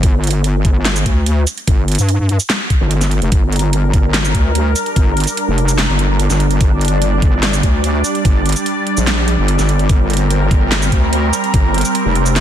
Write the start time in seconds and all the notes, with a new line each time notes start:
0.03 G1, kick, closed hi-hat
0.24 closed hi-hat
0.27 closed hi-hat
0.31 closed hi-hat
0.44 closed hi-hat
0.65 G1, kick, closed hi-hat
0.85 snare, clap, closed hi-hat
0.96 shaker
1.06 D2, kick, closed hi-hat
1.26 closed hi-hat
1.47 closed hi-hat, shaker
1.57 closed hi-hat
1.67 G1, kick, closed hi-hat
1.88 closed hi-hat
1.92 closed hi-hat
1.95 G2, closed hi-hat, shaker
2.09 closed hi-hat
2.19 G2
2.29 closed hi-hat
2.40 shaker
2.50 snare, clap, closed hi-hat
2.70 kick, closed hi-hat
2.81 G1
2.91 closed hi-hat
3.01 snare, shaker
3.11 closed hi-hat
3.22 F1, closed hi-hat
3.32 G1 G3 D4 A#4, kick, closed hi-hat
3.52 closed hi-hat
3.56 closed hi-hat
3.59 closed hi-hat
3.73 closed hi-hat
3.93 G1, kick, closed hi-hat
4.14 snare, clap, closed hi-hat
4.25 shaker
4.35 D2, kick, closed hi-hat
4.55 closed hi-hat
4.76 closed hi-hat, shaker
4.86 closed hi-hat
4.96 G1, kick, closed hi-hat
5.17 closed hi-hat
5.20 closed hi-hat
5.24 closed hi-hat, shaker
5.37 closed hi-hat
5.48 F1
5.58 closed hi-hat
5.68 shaker
5.78 snare, clap, closed hi-hat
5.89 G1
5.99 closed hi-hat
6.20 closed hi-hat
6.30 G1, snare, shaker
6.40 closed hi-hat
6.51 closed hi-hat
6.61 G1 D5, kick, closed hi-hat
6.81 closed hi-hat
6.85 closed hi-hat
6.88 closed hi-hat
7.02 closed hi-hat
7.22 G1, kick, closed hi-hat
7.43 snare, clap, closed hi-hat
7.53 shaker
7.63 D2, kick, closed hi-hat
7.84 closed hi-hat
8.04 closed hi-hat, shaker
8.15 closed hi-hat
8.25 G1, kick, closed hi-hat
8.46 closed hi-hat
8.49 closed hi-hat
8.52 closed hi-hat, shaker
8.66 closed hi-hat
8.87 closed hi-hat
8.97 A#1, shaker
9.07 snare, clap, closed hi-hat
9.28 closed hi-hat
9.38 G1
9.48 closed hi-hat
9.59 G1, snare, shaker
9.69 closed hi-hat
9.79 closed hi-hat
9.89 G1 C4 A#4, kick, closed hi-hat
10.10 closed hi-hat
10.13 closed hi-hat
10.17 closed hi-hat
10.30 closed hi-hat
10.51 G1, kick, closed hi-hat
10.72 snare, clap, closed hi-hat
10.82 shaker
10.92 D2, kick, closed hi-hat
11.13 closed hi-hat
11.33 closed hi-hat, shaker
11.44 closed hi-hat
11.54 G1, kick, closed hi-hat
11.74 closed hi-hat
11.78 closed hi-hat
11.81 closed hi-hat, shaker
11.95 closed hi-hat
12.05 F1
12.15 closed hi-hat
12.26 shaker
12.36 snare, clap, closed hi-hat